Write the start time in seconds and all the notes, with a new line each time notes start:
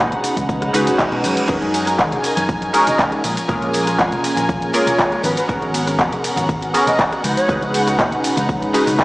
Already playing: B3 C#4 D#4 F#4 G#4 B4 F#5
0.00 G#3 D#4 F#4 B4
0.12 D#4 F#4 B4, closed hi-hat, low conga
0.24 muted fingered electric bass stroke, open hi-hat, tambourine, shaker
0.36 C#2 D#4 F#4 B4, kick, closed hi-hat, tambourine, high conga, shaker
0.49 kick, tambourine, reverse cymbal, shaker
0.62 D#4 F#4 B4, cross-stick, closed hi-hat
0.73 C#2 G#3 C#4 D#4 F#4 G#4 B4, open hi-hat, tambourine, shaker
0.87 D#4 F#4 B4, closed hi-hat, tambourine, high conga, low conga, shaker
0.99 G#3 D#4 F#4 B4, kick, clap, tambourine, shaker
1.12 B2, cross-stick, closed hi-hat
1.24 F#2 G#3 D#4 F#4 B4, open hi-hat, tambourine, high conga, shaker
1.37 closed hi-hat, tambourine, shaker
1.48 F#2 G#3 C#4 D#4 F#4 G#4 A#4 G#5, kick, crash, ride, tambourine, shaker
1.61 F#2, closed hi-hat, high conga
1.74 G#3 C#4 D#4 A#4, open hi-hat, ride, tambourine, shaker
1.86 C#4 D#4 A#4, cross-stick, closed hi-hat, tambourine, shaker
1.98 D#3 G#3 C#4 D#4 A#4, kick, clap, ride, tambourine, high conga, shaker
2.11 C#4 D#4 A#4, closed hi-hat, low conga
2.23 muted fingered electric bass stroke, open hi-hat, ride, tambourine, shaker
2.36 F#2 C#4 D#4 A#4, closed hi-hat, tambourine, high conga, shaker
2.49 kick, ride, tambourine, shaker
2.61 C#4 D#4 A#4, closed hi-hat
2.73 G#3 C#4 D#4 F#4 G#4 A#4, open hi-hat, ride, tambourine, shaker
2.87 C#4 D#4 A#4 D#5, closed hi-hat, tambourine, high conga, low conga, shaker
2.98 G#3 C#4 D#4 A#4, kick, clap, ride, tambourine, shaker
3.12 cross-stick, closed hi-hat
3.23 A#1 G#3 C#4 F4 A#4 G#5, open hi-hat, ride, tambourine, high conga, shaker
3.36 C#4 F4 A#4, closed hi-hat, tambourine, shaker
3.48 A#1 G#3 A#3 C#4 F4 G#4 A#4, kick, ride, tambourine, shaker
3.62 A#1, closed hi-hat, high conga
3.73 G#3 C#4 F4 A#4, open hi-hat, ride, tambourine, shaker
3.87 C#4 F4 A#4, cross-stick, closed hi-hat, tambourine, shaker
3.98 F2 G#3 C#4 F4 A#4, kick, clap, ride, tambourine, high conga, shaker
4.12 C#4 F4 A#4, closed hi-hat, low conga
4.24 muted fingered electric bass stroke, open hi-hat, ride, tambourine, shaker
4.36 A#1 C#4 F4 A#4, closed hi-hat, tambourine, high conga, shaker
4.49 kick, ride, tambourine, shaker
4.62 C#4 F4 A#4, closed hi-hat
4.73 G#3 A#3 C#4 F4 G#4 A#4 C#5, open hi-hat, ride, tambourine, shaker
4.86 C#4 F4 A#4, closed hi-hat, tambourine, high conga, low conga, shaker
4.98 G#3 C#4 F4 A#4, kick, clap, ride, tambourine, shaker
5.12 cross-stick, closed hi-hat
5.23 G#1 B3 C#4 F#4 A#4 B4 F#5, open hi-hat, ride, tambourine, high conga, shaker
5.36 C#4 F#4 A#4 B4, closed hi-hat, tambourine, shaker
5.48 G#1 B3 C#4 F#4 G#4 A#4, kick, ride, tambourine, shaker
5.62 G#1, closed hi-hat, high conga
5.74 B3 C#4 F#4 A#4, open hi-hat, ride, tambourine, shaker
5.87 C#4 F#4 A#4, cross-stick, closed hi-hat, tambourine, shaker
5.99 F2 B3 C#4 F#4 A#4, kick, clap, ride, tambourine, high conga, shaker
6.11 C#4 F#4 A#4, closed hi-hat, low conga
6.24 muted fingered electric bass stroke, open hi-hat, ride, tambourine, shaker
6.36 G#1 C#4 F#4 A#4, closed hi-hat, tambourine, high conga, shaker
6.49 kick, ride, tambourine, shaker
6.61 C#4 F#4 A#4, closed hi-hat
6.73 B3 C#4 F#4 G#4 A#4, open hi-hat, ride, tambourine, shaker
6.86 C#4 F#4 A#4 D#5, closed hi-hat, tambourine, high conga, low conga, shaker
6.99 B3 C#4 F#4 A#4, kick, clap, ride, shaker
7.12 cross-stick, closed hi-hat
7.24 C#2 G#3 D#4 F#4 B4, open hi-hat, ride, tambourine, high conga, shaker
7.37 C#5, closed hi-hat, tambourine, shaker
7.48 C#2 G#3 C#4 D#4 F#4 G#4 B4, kick, ride, tambourine, shaker
7.62 C#2, closed hi-hat, high conga
7.73 G#3 D#4 F#4 B4 F#5, open hi-hat, ride, tambourine, shaker
7.86 D#4 F#4 B4 F#5, cross-stick, closed hi-hat, tambourine, shaker
7.98 A#2 G#3 D#4 F#4 B4, kick, clap, ride, tambourine, high conga, shaker
8.12 D#4 F#4 B4, closed hi-hat, low conga
8.24 muted fingered electric bass stroke, open hi-hat, ride, tambourine, shaker
8.36 C#2 D#4 F#4 B4, closed hi-hat, tambourine, high conga, shaker
8.49 kick, ride, tambourine, shaker
8.61 G#2 D#4 F#4 B4, closed hi-hat
8.73 G#3 C#4 D#4 F#4 G#4 B4, open hi-hat, ride, tambourine, shaker
8.87 C#2 D#4 F#4 B4, open hi-hat, tambourine, high conga, low conga, shaker
8.98 G#3 D#4 F#4 B4, kick, clap, ride, tambourine, shaker